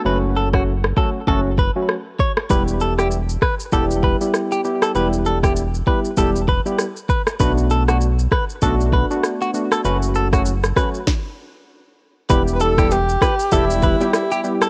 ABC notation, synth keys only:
X:1
M:4/4
L:1/16
Q:"Swing 16ths" 1/4=98
K:Edor
V:1 name="Synth keys"
[F,A,CF]3 [F,A,CF] z2 [F,A,CF] z [F,A,CF] z2 [F,A,CF] z4 | [G,B,EG]3 [G,B,EG] z4 [G,B,EG]3 [G,B,EG]3 [G,B,EG]2 | [G,B,EG]3 [G,B,EG] z2 [G,B,EG] z [G,B,EG] z2 [G,B,EG] z4 | [A,B,DF]3 [A,B,DF] z4 [A,B,DF]3 [A,B,DF]3 [A,B,DF]2 |
[F,A,CF]3 [F,A,CF] z2 [F,A,CF] z8 z | [G,B,EG]3 [G,B,EG] z4 [G,B,EG]3 [G,B,EG]3 [G,B,EG]2 |]